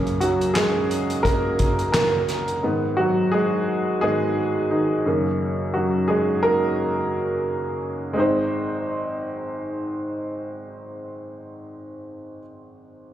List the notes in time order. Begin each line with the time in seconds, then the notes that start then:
Already playing: F#2 C#3 A#3
0.07 closed hi-hat
0.20 F#3 F#4, closed hi-hat
0.41 closed hi-hat
0.54 G#3 G#4, snare, clap, closed hi-hat
0.91 closed hi-hat
1.10 closed hi-hat
1.23 A#3 A#4, kick, closed hi-hat
1.59 kick, closed hi-hat
1.79 closed hi-hat
1.92 A#3 A#4, snare, clap, closed hi-hat
2.28 snare, closed hi-hat
2.48 closed hi-hat
2.63 G#2 D#3 B3
2.97 F#3 F#4
3.32 G#3 G#4
4.01 G#2 D#3 G#3 B3 G#4
4.71 D#3 D#4
5.06 F#2 C#3 A#3
5.74 F#3 F#4
6.08 G#3 G#4
6.43 A#3 A#4
8.13 G#1 G#3 C4
8.18 D#4 C5